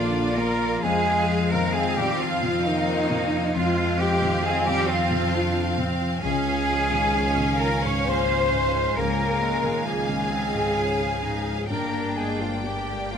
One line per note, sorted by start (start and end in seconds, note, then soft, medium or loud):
0.00 0.79 A#1 medium
0.00 0.78 A#2 medium
0.00 0.87 A#2 medium
0.00 0.38 D3 medium
0.00 0.86 D#3 soft
0.00 0.16 F3 medium
0.00 0.37 F3 medium
0.00 0.37 A#3 medium
0.00 0.59 A#3 medium
0.00 0.80 A#3 medium
0.00 0.38 D4 medium
0.00 0.15 F4 soft
0.00 0.85 F4 medium
0.00 0.86 F4 medium
0.00 0.87 A#4 medium
0.00 0.39 D5 medium
0.00 0.80 D5 medium
0.00 0.79 F5 medium
0.00 1.28 F5 medium
0.00 0.87 D6 medium
0.16 0.52 F3 medium
0.16 1.06 F4 soft
0.37 0.82 F3 soft
0.37 0.73 A#3 medium
0.37 0.83 A#3 medium
0.37 0.83 A#4 medium
0.37 0.84 A#5 medium
0.60 0.83 F3 soft
0.60 0.87 A#3 medium
0.83 3.51 F2 medium
0.83 3.55 F2 medium
0.83 3.54 F3 medium
0.83 1.50 G#3 medium
0.83 1.78 G#3 medium
0.83 3.51 C4 medium
0.83 1.49 G#4 loud
0.83 3.55 F5 medium
0.83 3.51 F5 medium
0.83 1.24 G#5 loud
1.07 2.87 F4 medium
1.07 1.43 F4 medium
1.29 1.65 F3 medium
1.29 1.73 F5 medium
1.52 1.75 D#3 soft
1.52 1.74 A#3 medium
1.52 1.75 A#4 medium
1.52 4.21 C5 medium
1.52 1.75 A#5 medium
1.74 2.11 F3 medium
1.74 1.98 G#3 medium
1.74 2.39 C4 medium
1.74 1.97 G#4 medium
1.74 2.64 F5 medium
1.74 1.98 G#5 medium
1.97 2.20 D#3 soft
1.97 2.21 G3 medium
1.97 2.20 G4 loud
1.97 2.22 G5 medium
1.97 2.42 F6 medium
2.19 2.57 F3 medium
2.19 2.66 F3 medium
2.19 2.65 F4 medium
2.19 2.66 F5 medium
2.19 4.89 C6 medium
2.43 2.79 C3 soft
2.43 4.66 F6 medium
2.63 3.39 D#3 loud
2.63 3.55 D#4 loud
2.63 3.00 F4 medium
2.63 3.28 D#5 medium
2.63 3.99 F5 medium
2.68 3.58 A#3 medium
2.88 3.24 F3 medium
2.88 3.32 F4 medium
3.10 3.46 C3 medium
3.10 3.76 C4 medium
3.33 3.68 F3 soft
3.33 5.55 F4 medium
3.54 6.19 F2 medium
3.54 7.45 F3 medium
3.54 3.99 F3 medium
3.54 4.47 G#3 medium
3.54 6.19 C4 medium
3.54 3.99 F4 loud
3.54 6.19 F5 medium
3.54 4.02 F5 medium
3.77 5.77 C4 medium
3.77 4.13 F4 medium
3.99 4.35 F3 soft
3.99 4.44 G4 medium
3.99 4.44 F5 medium
3.99 4.47 G5 medium
4.22 4.44 D#3 soft
4.22 6.27 C5 medium
4.42 4.80 F3 medium
4.42 4.65 G#3 medium
4.42 5.36 C4 medium
4.42 4.67 G#4 medium
4.42 5.33 F5 medium
4.42 4.70 G#5 medium
4.66 4.89 D#3 medium
4.66 4.88 G3 medium
4.66 4.89 G4 loud
4.66 4.89 G5 medium
4.66 5.11 F6 medium
4.89 5.77 F3 medium
4.89 5.25 F3 medium
4.89 5.78 F4 medium
4.89 5.76 F5 medium
4.89 6.27 C6 medium
5.11 5.46 C3 medium
5.11 7.60 F6 medium
5.34 5.80 D4 medium
5.34 5.69 F4 medium
5.55 5.91 F3 medium
5.55 6.00 F4 medium
5.78 6.14 C3 medium
5.78 6.27 C4 medium
5.78 6.22 C4 medium
6.01 6.24 F3 soft
6.01 6.69 F4 soft
6.22 8.93 C#2 medium
6.22 8.95 C#3 medium
6.22 7.56 G#3 medium
6.22 8.96 C#4 medium
6.22 7.12 C#4 medium
6.22 7.56 G#4 loud
6.22 8.92 F5 medium
6.22 8.92 G#5 medium
6.22 7.64 G#5 medium
6.47 6.83 F4 medium
6.69 7.05 F3 soft
6.69 8.28 F4 medium
6.92 7.14 D#3 soft
7.15 7.51 F3 medium
7.15 8.10 C#4 medium
7.15 11.05 G#4 medium
7.37 7.60 D#3 soft
7.37 7.82 F5 medium
7.60 7.97 F3 soft
7.60 7.84 A#3 medium
7.60 7.83 A#4 medium
7.60 7.88 A#5 medium
7.60 10.30 F6 medium
7.83 8.20 G#2 soft
7.83 8.06 C#4 medium
7.83 8.06 C#5 medium
7.83 9.62 F5 medium
7.83 8.11 C#6 medium
8.06 8.54 A#3 medium
8.06 8.43 F4 medium
8.06 8.96 C5 medium
8.06 8.99 C6 medium
8.29 8.65 F3 soft
8.29 9.40 F4 medium
8.51 8.88 G#2 medium
8.51 9.19 G#3 soft
8.51 8.97 G#3 medium
8.75 9.10 F3 soft
8.96 11.66 C#2 medium
8.96 11.74 C#3 medium
8.96 11.66 C#3 medium
8.96 9.86 A#3 medium
8.96 9.44 A#3 medium
8.96 9.86 A#4 medium
8.96 11.66 F5 medium
8.96 11.66 G#5 medium
8.96 9.88 A#5 medium
9.19 11.22 G#3 soft
9.19 9.55 F4 soft
9.41 9.77 F3 soft
9.41 9.89 G#3 medium
9.41 10.99 F4 soft
9.63 9.86 D#3 soft
9.63 10.08 F5 soft
9.85 10.22 F3 medium
9.85 11.70 G#3 medium
9.85 10.33 A#3 medium
9.85 11.69 G#4 medium
9.85 11.44 G#5 medium
9.85 11.74 C#6 medium
10.09 10.32 D#3 soft
10.09 10.52 F5 soft
10.31 10.68 F3 soft
10.31 10.79 C4 medium
10.31 11.73 F6 soft
10.53 10.90 G#2 soft
10.53 11.73 F5 medium
10.77 11.25 C#4 medium
10.77 11.14 F4 soft
10.77 11.73 C#5 soft
11.00 11.38 F3 soft
11.00 11.74 F4 soft
11.23 11.60 G#2 soft
11.23 11.74 G#3 soft
11.23 11.56 D#4 medium
11.47 11.70 F3 soft
11.47 11.74 C#4 soft
11.69 13.18 G1 medium
11.69 13.18 G2 soft
11.69 13.18 G2 medium
11.69 12.16 A#3 medium
11.69 13.18 A#3 medium
11.69 13.18 D4 medium
11.69 12.15 A#4 medium
11.69 13.18 D5 medium
11.69 13.18 G5 medium
11.69 12.18 A#5 medium
11.93 13.18 A#3 soft
11.93 12.31 G4 soft
12.16 12.41 G#3 medium
12.16 12.55 A#3 soft
12.16 12.40 G#4 medium
12.16 12.39 G#5 medium
12.39 12.65 F3 medium
12.39 12.63 G#3 soft
12.39 12.64 F4 medium
12.39 13.18 A#4 soft
12.39 12.65 F5 medium
12.63 13.13 G3 medium
12.63 13.02 A#3 soft
12.63 13.10 G4 medium
12.63 13.12 G5 medium
12.89 13.12 G#3 soft
13.11 13.18 F3 medium
13.11 13.18 A#3 soft
13.11 13.18 F4 medium
13.11 13.18 F5 medium
13.11 13.18 A#5 soft